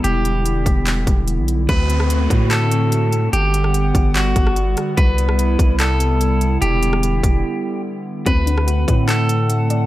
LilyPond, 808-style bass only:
\new Staff \with { instrumentName = "808-style bass" } { \clef bass \time 4/4 \key d \mixolydian \tempo 4 = 146 e,,4. e,,4 e,,8. b,,8. | d,4. a,2~ a,8 | g,,4. g,,4 g,,4 r8 | c,4. c,2~ c,8 |
e,,4. e,,8 r2 | d,4. a,2~ a,8 | }